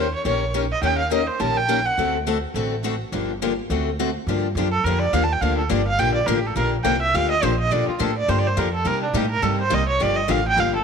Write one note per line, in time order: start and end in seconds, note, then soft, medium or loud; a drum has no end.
0.00 0.13 D#2 medium
0.00 0.12 C5 medium
0.14 0.25 C#5 medium
0.25 0.71 A#1 medium
0.25 0.43 D#3 medium
0.25 0.43 A#3 medium
0.25 0.44 C#4 medium
0.25 0.44 G4 medium
0.25 0.44 A#4 medium
0.25 0.52 C#5 medium
0.54 0.64 D#3 medium
0.54 0.64 A#3 medium
0.54 0.64 C#4 medium
0.54 0.64 G4 medium
0.54 0.64 A#4 medium
0.72 0.82 D#5 medium
0.82 1.28 D#2 medium
0.82 1.01 D#3 medium
0.82 1.01 A#3 medium
0.82 1.01 C#4 medium
0.82 1.01 G4 medium
0.82 1.01 A#4 medium
0.82 0.97 G5 medium
0.98 1.10 F5 medium
1.11 1.21 D#3 medium
1.11 1.21 A#3 medium
1.11 1.21 C#4 medium
1.11 1.21 G4 medium
1.11 1.22 A#4 medium
1.11 1.29 D#5 medium
1.27 1.42 C5 medium
1.40 1.86 A#1 medium
1.40 1.58 D#3 medium
1.40 1.58 A#3 medium
1.40 1.58 C#4 medium
1.40 1.59 G4 medium
1.40 1.59 A#4 medium
1.40 1.58 A5 medium
1.57 1.87 G5 loud
1.69 1.79 D#3 medium
1.69 1.79 A#3 medium
1.69 1.79 C#4 medium
1.69 1.79 G4 medium
1.69 1.79 A#4 medium
1.86 2.14 F#5 medium
1.98 2.44 D2 medium
1.98 2.16 D3 medium
1.98 2.17 A3 medium
1.98 2.17 C4 medium
1.98 2.17 F#4 medium
1.98 2.17 A4 medium
2.27 2.37 D3 medium
2.27 2.37 A3 medium
2.27 2.37 C4 medium
2.27 2.37 F#4 medium
2.27 2.37 A4 medium
2.54 3.00 A1 medium
2.54 2.74 D3 medium
2.54 2.74 A3 medium
2.54 2.74 C4 medium
2.54 2.74 F#4 medium
2.54 2.74 A4 medium
2.84 2.94 D3 medium
2.84 2.94 A3 medium
2.84 2.94 C4 medium
2.84 2.94 F#4 medium
2.84 2.94 A4 medium
3.12 3.58 G1 medium
3.12 3.31 D3 medium
3.12 3.31 F3 medium
3.12 3.31 A#3 medium
3.12 3.31 D4 medium
3.12 3.32 G4 medium
3.42 3.52 D3 medium
3.42 3.52 F3 medium
3.42 3.52 A#3 medium
3.42 3.52 D4 medium
3.42 3.52 G4 medium
3.70 4.16 D2 medium
3.70 3.88 D3 medium
3.70 3.89 A3 medium
3.70 3.89 C4 medium
3.70 3.89 F#4 medium
3.70 3.89 A4 medium
3.99 4.09 D3 medium
3.99 4.09 A3 medium
3.99 4.10 C4 medium
3.99 4.09 F#4 medium
3.99 4.10 A4 medium
4.27 4.54 G2 medium
4.27 4.46 D3 medium
4.27 4.47 F3 medium
4.27 4.47 A#3 medium
4.27 4.47 D4 medium
4.27 4.47 G4 medium
4.55 4.83 F#2 medium
4.55 4.67 D3 medium
4.55 4.67 F3 medium
4.55 4.67 A#3 medium
4.55 4.67 D4 medium
4.55 4.67 G4 medium
4.72 4.86 A4 medium
4.84 5.12 F2 medium
4.84 5.04 D3 medium
4.84 5.04 F3 medium
4.84 5.04 A#3 medium
4.84 5.05 D4 medium
4.84 5.05 G4 medium
4.84 5.00 A#4 medium
4.99 5.15 D5 medium
5.13 5.41 D#2 medium
5.13 5.23 D3 medium
5.13 5.24 F3 medium
5.13 5.24 A#3 medium
5.13 5.24 D4 medium
5.13 5.24 G4 medium
5.13 5.25 F5 medium
5.24 5.34 A5 medium
5.33 5.42 G5 medium
5.41 5.69 D2 medium
5.41 5.61 D3 medium
5.41 5.61 F3 medium
5.41 5.61 A#3 medium
5.41 5.61 D4 medium
5.41 5.61 G4 medium
5.41 5.57 F5 medium
5.58 5.71 A4 soft
5.69 5.98 G1 medium
5.69 5.80 D3 medium
5.69 5.80 F3 medium
5.69 5.81 A#3 medium
5.69 5.81 D4 medium
5.69 5.81 G4 loud
5.69 5.86 D5 medium
5.88 6.01 F5 loud
5.99 6.26 A#1 medium
5.99 6.18 D3 medium
5.99 6.18 F3 medium
5.99 6.18 A#3 medium
5.99 6.18 D4 medium
5.99 6.18 G4 medium
5.99 6.14 G5 loud
6.14 6.28 D5 medium
6.26 6.55 A1 medium
6.26 6.38 D3 medium
6.26 6.39 F3 medium
6.26 6.38 A#3 medium
6.26 6.38 D4 loud
6.26 6.39 G4 medium
6.26 6.38 A#4 medium
6.37 6.48 G4 medium
6.47 6.56 A4 medium
6.56 6.84 A#1 medium
6.56 6.75 D3 medium
6.56 6.75 F3 medium
6.56 6.75 A#3 medium
6.56 6.75 D4 medium
6.56 6.76 G4 medium
6.56 6.67 A#4 medium
6.84 7.13 C2 medium
6.84 6.95 D3 medium
6.84 6.95 F3 medium
6.84 6.95 A#3 medium
6.84 6.96 D4 loud
6.84 6.96 G4 loud
6.84 7.00 G5 medium
7.02 7.17 E5 medium
7.14 7.42 D2 medium
7.14 7.33 D3 medium
7.14 7.33 F3 medium
7.14 7.33 A#3 medium
7.14 7.33 D4 medium
7.14 7.33 G4 medium
7.14 7.30 F5 loud
7.31 7.45 D#5 medium
7.43 7.71 A#1 medium
7.43 7.53 D3 medium
7.43 7.53 F3 medium
7.43 7.53 A#3 medium
7.43 7.53 D4 medium
7.43 7.53 G4 medium
7.43 7.59 C5 medium
7.60 7.73 D#5 loud
7.71 7.87 A#2 medium
7.71 7.90 D3 medium
7.71 7.90 F3 medium
7.71 7.90 A#3 medium
7.71 7.90 D4 medium
7.71 7.91 G4 medium
7.71 7.88 D5 medium
7.88 8.03 F4 soft
7.88 muted upright bass stroke soft
7.99 8.28 A2 medium
7.99 8.10 D3 medium
7.99 8.10 F3 medium
7.99 8.10 A#3 medium
7.99 8.10 D4 loud
7.99 8.10 G4 loud
7.99 8.17 A4 medium
8.18 8.31 D5 loud
8.28 8.56 G2 medium
8.28 8.47 D3 medium
8.28 8.47 F3 medium
8.28 8.47 A#3 medium
8.28 8.47 D4 medium
8.28 8.47 G4 medium
8.28 8.40 C5 medium
8.39 8.48 D5 loud
8.47 8.60 C5 medium
8.57 8.84 F2 medium
8.57 8.67 D3 medium
8.57 8.67 F3 medium
8.57 8.67 A#3 medium
8.57 8.67 D4 medium
8.57 8.68 G4 loud
8.57 8.73 A#4 medium
8.74 8.88 A4 medium
8.85 9.04 C3 medium
8.85 9.13 C3 medium
8.85 9.04 G3 medium
8.85 9.04 A#3 medium
8.85 9.04 D#4 medium
8.85 9.04 G4 medium
8.85 9.02 A#4 medium
9.03 9.19 D4 medium
9.13 9.42 A2 medium
9.13 9.25 C3 medium
9.13 9.25 G3 medium
9.13 9.25 A#3 medium
9.13 9.25 D#4 medium
9.13 9.25 G4 medium
9.13 9.29 G4 medium
9.30 9.44 A#4 loud
9.42 9.70 G2 medium
9.42 9.61 C3 medium
9.42 9.62 G3 medium
9.42 9.61 A#3 medium
9.42 9.62 D#4 medium
9.42 9.62 G4 medium
9.42 9.59 A4 medium
9.60 9.75 C5 medium
9.70 9.99 C2 medium
9.70 9.81 C3 medium
9.70 9.81 G3 medium
9.70 9.81 A#3 medium
9.70 9.81 D#4 loud
9.70 9.81 G4 medium
9.70 9.88 D#5 medium
9.88 10.04 C#5 medium
10.00 10.28 G1 medium
10.00 10.18 D3 medium
10.00 10.19 F3 medium
10.00 10.19 A#3 medium
10.00 10.19 D4 medium
10.00 10.19 G4 medium
10.00 10.17 D5 medium
10.16 10.33 D#5 medium
10.28 10.56 A1 medium
10.28 10.39 D3 medium
10.28 10.39 F3 medium
10.28 10.39 A#3 medium
10.28 10.39 D4 medium
10.28 10.39 G4 medium
10.28 10.46 F5 medium
10.48 10.61 G5 loud
10.57 10.84 G1 medium
10.57 10.76 D3 medium
10.57 10.76 F3 medium
10.57 10.76 A#3 medium
10.57 10.76 D4 medium
10.57 10.76 G4 medium
10.57 10.75 F5 medium
10.75 10.84 A4 medium